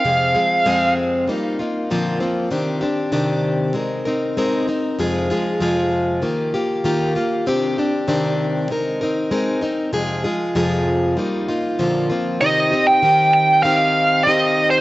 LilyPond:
<<
  \new Staff \with { instrumentName = "Lead electric guitar" } { \time 4/4 \key c \minor \tempo 4 = 97 f''4. r2 r8 | r1 | r1 | r1 |
r1 | ees''8. g''8. g''8 f''4 ees''8. c''16 | }
  \new Staff \with { instrumentName = "Steel-string acoustic guitar" } { \time 4/4 \key c \minor <f, c f aes c' aes'>8 <f aes c' aes'>8 <f, c f aes c' aes'>4 <g bes ees' f'>8 <bes ees' f'>8 <bes, d f bes c' f'>8 <f bes c' f'>8 | <c ees c' d' g'>8 <c' d' g'>8 <c ees c' d' g'>4 <aes c' ees' bes'>8 <c' ees' bes'>8 <aes c' ees' bes'>8 <c' ees' bes'>8 | <f, c f aes f' aes'>8 <f aes f' aes'>8 <f, c f aes f' aes'>4 <ees bes f' g'>8 <bes f' g'>8 <ees bes f' g'>8 <bes f' g'>8 | <c ees c' d' g'>8 <c' d' g'>8 <c ees c' d' g'>4 <aes c' ees' bes'>8 <c' ees' bes'>8 <aes c' ees' bes'>8 <c' ees' bes'>8 |
<f, c f aes f' aes'>8 <f aes f' aes'>8 <f, c f aes f' aes'>4 <g bes ees' f'>8 <bes ees' f'>8 <bes, d f bes c' f'>8 <f bes c' f'>8 | <c ees c' ees' g'>8 <c' ees' g'>8 <ees c' ees' g'>4 <c ees c' ees' g'>4 <ees c' ees' g'>4 | }
>>